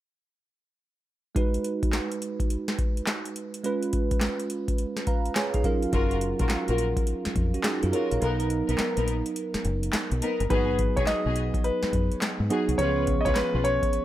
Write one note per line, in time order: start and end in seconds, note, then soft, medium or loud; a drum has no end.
1.35 3.60 G#3 medium
1.35 3.60 D#4 medium
1.35 3.61 F#4 medium
1.35 3.61 B4 medium
1.35 kick loud
1.35 closed hi-hat medium
1.54 closed hi-hat soft
1.64 closed hi-hat medium
1.83 kick medium
1.83 closed hi-hat soft
1.93 snare loud
1.93 clap medium
1.93 closed hi-hat medium
2.12 closed hi-hat medium
2.22 closed hi-hat medium
2.40 kick medium
2.40 closed hi-hat medium
2.50 closed hi-hat medium
2.68 snare medium
2.68 closed hi-hat soft
2.79 kick medium
2.79 closed hi-hat medium
2.97 closed hi-hat soft
3.07 snare loud
3.07 clap medium
3.07 closed hi-hat medium
3.25 closed hi-hat medium
3.36 closed hi-hat medium
3.54 closed hi-hat medium
3.63 5.60 G#3 medium
3.63 5.61 C#4 medium
3.63 5.05 F4 medium
3.63 5.05 B4 medium
3.63 closed hi-hat medium
3.83 closed hi-hat soft
3.93 kick medium
3.93 closed hi-hat medium
4.11 kick medium
4.11 closed hi-hat medium
4.21 snare loud
4.21 clap medium
4.21 closed hi-hat medium
4.40 closed hi-hat medium
4.50 closed hi-hat medium
4.68 kick medium
4.68 closed hi-hat medium
4.78 closed hi-hat medium
4.97 snare medium
4.97 closed hi-hat soft
5.07 5.35 B4 medium
5.07 5.35 F5 medium
5.07 5.34 A#5 medium
5.07 kick medium
5.07 closed hi-hat medium
5.26 closed hi-hat soft
5.36 5.53 G#4 medium
5.36 5.53 C#5 medium
5.36 5.62 G#5 medium
5.36 snare loud
5.36 clap medium
5.36 closed hi-hat medium
5.54 5.82 D#4 medium
5.54 5.82 G#4 medium
5.54 kick medium
5.54 closed hi-hat medium
5.64 7.89 F#3 medium
5.64 7.33 C#4 medium
5.64 7.33 F4 medium
5.64 7.33 A#4 medium
5.64 5.91 F5 medium
5.64 kick medium
5.64 closed hi-hat medium
5.83 closed hi-hat medium
5.93 6.32 F#1 medium
5.93 6.12 F4 medium
5.93 6.12 F#4 medium
5.93 6.12 A#4 loud
5.93 kick loud
5.93 closed hi-hat medium
6.11 closed hi-hat medium
6.21 closed hi-hat medium
6.39 6.49 A#1 medium
6.39 6.51 F4 medium
6.39 6.51 F#4 medium
6.39 6.51 A#4 medium
6.39 kick loud
6.39 closed hi-hat medium
6.50 snare loud
6.50 clap medium
6.50 closed hi-hat medium
6.68 6.93 A#1 medium
6.68 6.79 F4 medium
6.68 6.80 F#4 medium
6.68 6.80 A#4 medium
6.68 closed hi-hat medium
6.78 closed hi-hat medium
6.97 kick medium
6.97 closed hi-hat medium
7.07 closed hi-hat medium
7.25 muted fingered electric bass stroke soft
7.25 snare medium
7.25 closed hi-hat soft
7.36 7.51 F2 medium
7.36 kick medium
7.36 closed hi-hat medium
7.54 7.64 C#4 soft
7.54 7.64 F#4 medium
7.54 closed hi-hat soft
7.64 7.82 D#4 medium
7.64 7.82 G#4 medium
7.64 snare loud
7.64 clap loud
7.64 closed hi-hat medium
7.83 7.92 F#2 medium
7.83 7.93 F4 medium
7.83 7.93 A#4 medium
7.83 closed hi-hat medium
7.93 8.12 F4 medium
7.93 8.12 F#4 medium
7.93 8.11 G#4 medium
7.93 8.12 A#4 medium
7.93 8.11 C#5 medium
7.93 closed hi-hat medium
8.11 8.21 A#1 medium
8.11 8.28 A#4 medium
8.11 8.39 F5 medium
8.11 closed hi-hat medium
8.20 8.61 B1 loud
8.20 10.45 F#3 medium
8.20 10.46 B3 medium
8.20 8.40 B3 medium
8.20 10.46 D#4 medium
8.20 8.40 D#4 medium
8.20 8.30 A4 medium
8.20 8.41 A#4 loud
8.20 closed hi-hat medium
8.29 10.50 A#4 medium
8.40 closed hi-hat soft
8.50 closed hi-hat medium
8.68 8.77 B1 medium
8.68 8.80 B3 medium
8.68 8.80 D#4 medium
8.68 8.80 A#4 medium
8.68 closed hi-hat medium
8.78 muted fingered electric bass stroke soft
8.78 snare loud
8.78 clap medium
8.78 closed hi-hat medium
8.97 9.21 A#1 medium
8.97 9.08 B3 medium
8.97 9.08 D#4 medium
8.97 9.08 A#4 medium
8.97 closed hi-hat medium
9.08 closed hi-hat medium
9.26 closed hi-hat medium
9.36 closed hi-hat medium
9.54 muted fingered electric bass stroke soft
9.54 snare medium
9.54 closed hi-hat soft
9.65 9.89 F#1 medium
9.65 closed hi-hat medium
9.83 closed hi-hat medium
9.93 snare loud
9.93 clap medium
9.93 closed hi-hat medium
10.12 10.20 B1 medium
10.12 closed hi-hat medium
10.22 10.40 B3 medium
10.22 10.41 D#4 medium
10.22 10.41 A#4 medium
10.22 closed hi-hat medium
10.40 10.49 G1 medium
10.40 closed hi-hat soft
10.49 10.90 G#1 loud
10.49 11.28 F#3 medium
10.49 11.28 B3 medium
10.49 10.69 B3 medium
10.49 11.28 D#4 medium
10.49 10.69 F#4 medium
10.49 11.29 G#4 medium
10.49 10.69 G#4 loud
10.49 10.94 B4 medium
10.49 kick loud
10.49 closed hi-hat medium
10.79 kick medium
10.79 closed hi-hat medium
10.96 11.06 B1 medium
10.96 11.08 B3 medium
10.96 11.08 F#4 medium
10.96 11.09 G#4 medium
10.96 11.01 C#5 medium
10.96 kick loud
10.96 closed hi-hat medium
11.07 11.66 D#5 loud
11.07 snare loud
11.07 clap medium
11.07 closed hi-hat medium
11.26 11.50 B1 medium
11.26 11.37 B3 medium
11.26 11.37 F#4 medium
11.26 11.37 G#4 medium
11.36 closed hi-hat medium
11.54 kick medium
11.54 closed hi-hat medium
11.64 12.18 B4 medium
11.64 closed hi-hat medium
11.83 muted fingered electric bass stroke soft
11.83 snare medium
11.93 12.09 F#2 medium
11.93 kick medium
11.93 closed hi-hat medium
12.12 closed hi-hat soft
12.22 snare loud
12.22 clap loud
12.22 closed hi-hat medium
12.40 12.49 G#2 medium
12.50 12.72 F#3 medium
12.50 12.72 B3 medium
12.50 12.69 B3 medium
12.50 12.72 D#4 medium
12.50 12.69 F#4 medium
12.50 12.69 G#4 medium
12.50 12.72 G#4 medium
12.50 closed hi-hat medium
12.69 12.77 C2 medium
12.69 closed hi-hat medium
12.78 13.18 C#2 medium
12.78 13.57 F3 medium
12.78 13.57 B3 medium
12.78 13.57 C#4 medium
12.78 12.98 C#4 medium
12.78 12.98 F4 medium
12.78 12.87 G4 medium
12.78 12.98 B4 medium
12.78 13.22 C#5 medium
12.78 closed hi-hat medium
12.85 13.61 G#4 medium
13.07 kick medium
13.07 closed hi-hat medium
13.21 13.26 D#5 medium
13.25 13.34 C#2 medium
13.25 13.37 C#4 medium
13.25 13.37 F4 medium
13.25 13.37 B4 medium
13.25 13.36 C#5 loud
13.25 kick loud
13.25 closed hi-hat medium
13.35 13.65 B4 medium
13.35 snare loud
13.35 clap medium
13.35 closed hi-hat medium
13.54 13.78 B1 medium
13.54 13.65 C#4 medium
13.54 13.65 F4 medium
13.54 13.66 B4 medium
13.64 14.05 C#5 loud
13.64 closed hi-hat medium
13.83 kick medium
13.83 closed hi-hat medium
13.93 closed hi-hat medium